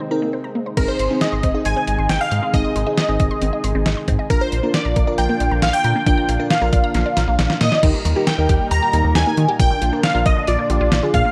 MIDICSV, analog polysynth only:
0, 0, Header, 1, 2, 480
1, 0, Start_track
1, 0, Tempo, 441176
1, 840, Time_signature, 4, 2, 24, 8
1, 12313, End_track
2, 0, Start_track
2, 0, Title_t, "Analog polysynth"
2, 0, Program_c, 0, 90
2, 0, Note_on_c, 0, 68, 92
2, 314, Note_off_c, 0, 68, 0
2, 839, Note_on_c, 0, 70, 96
2, 960, Note_on_c, 0, 72, 94
2, 963, Note_off_c, 0, 70, 0
2, 1321, Note_on_c, 0, 75, 93
2, 1331, Note_off_c, 0, 72, 0
2, 1801, Note_on_c, 0, 80, 108
2, 1815, Note_off_c, 0, 75, 0
2, 2281, Note_on_c, 0, 79, 106
2, 2295, Note_off_c, 0, 80, 0
2, 2392, Note_off_c, 0, 79, 0
2, 2402, Note_on_c, 0, 77, 104
2, 2761, Note_on_c, 0, 75, 102
2, 2772, Note_off_c, 0, 77, 0
2, 3227, Note_off_c, 0, 75, 0
2, 3240, Note_on_c, 0, 75, 88
2, 4397, Note_off_c, 0, 75, 0
2, 4679, Note_on_c, 0, 70, 96
2, 4800, Note_on_c, 0, 72, 96
2, 4803, Note_off_c, 0, 70, 0
2, 5158, Note_on_c, 0, 74, 101
2, 5171, Note_off_c, 0, 72, 0
2, 5637, Note_on_c, 0, 79, 111
2, 5653, Note_off_c, 0, 74, 0
2, 6117, Note_on_c, 0, 77, 100
2, 6133, Note_off_c, 0, 79, 0
2, 6236, Note_on_c, 0, 79, 115
2, 6242, Note_off_c, 0, 77, 0
2, 6573, Note_off_c, 0, 79, 0
2, 6596, Note_on_c, 0, 79, 108
2, 7044, Note_off_c, 0, 79, 0
2, 7078, Note_on_c, 0, 77, 94
2, 8235, Note_off_c, 0, 77, 0
2, 8279, Note_on_c, 0, 75, 114
2, 8726, Note_off_c, 0, 75, 0
2, 8999, Note_on_c, 0, 79, 101
2, 9480, Note_on_c, 0, 82, 114
2, 9494, Note_off_c, 0, 79, 0
2, 9961, Note_on_c, 0, 80, 105
2, 9974, Note_off_c, 0, 82, 0
2, 10407, Note_off_c, 0, 80, 0
2, 10441, Note_on_c, 0, 79, 109
2, 10887, Note_off_c, 0, 79, 0
2, 10922, Note_on_c, 0, 77, 94
2, 11144, Note_off_c, 0, 77, 0
2, 11161, Note_on_c, 0, 75, 89
2, 11401, Note_on_c, 0, 74, 96
2, 11408, Note_off_c, 0, 75, 0
2, 12122, Note_on_c, 0, 77, 89
2, 12142, Note_off_c, 0, 74, 0
2, 12313, Note_off_c, 0, 77, 0
2, 12313, End_track
0, 0, End_of_file